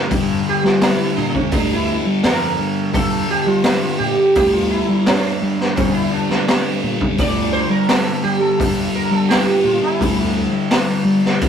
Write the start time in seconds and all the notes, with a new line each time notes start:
Already playing: G3
0.09 G2 D3 G3, kick, open hi-hat
0.49 G4
0.64 G3 F4, snare
0.81 E4, snare, open hi-hat
1.17 A#2 D4
1.29 D4
1.35 C4, kick
1.50 D2 G2 D3 G3 D4, kick, open hi-hat
1.73 E4
2.06 G3
2.23 F2 A#4, snare, open hi-hat
2.58 G2
2.92 G2 D3 G3 A4, kick, open hi-hat
3.30 G4
3.47 G3 F4
3.64 E4, snare, open hi-hat
3.82 F4
3.98 A#2 G4
4.35 D2 G2 D3 G3 G4, kick, open hi-hat
4.53 F4
4.70 E4
4.89 G3
5.06 D4, snare, open hi-hat
5.42 G3
5.60 snare
5.76 G2 D3 G3 C4, kick, open hi-hat
5.94 E4
6.12 D4
6.30 G3, snare
6.48 snare, open hi-hat
6.83 A#2
7.01 kick
7.17 D2 G2 D3 G3 D5, kick, open hi-hat
7.53 C5
7.70 G3 A#4
7.89 A4, snare, open hi-hat
8.23 G3 G4
8.41 A4
8.58 G2 D3 G3, kick, open hi-hat
8.95 A#4
9.11 G3 A4
9.29 G4, snare, open hi-hat
9.64 A#2 F4
9.82 E4
10.00 D2 G2 D3 G3, kick, open hi-hat
10.51 G3
10.71 snare, open hi-hat
10.96 D4
11.05 G3
11.25 snare
11.41 G2 D3 G3, kick, open hi-hat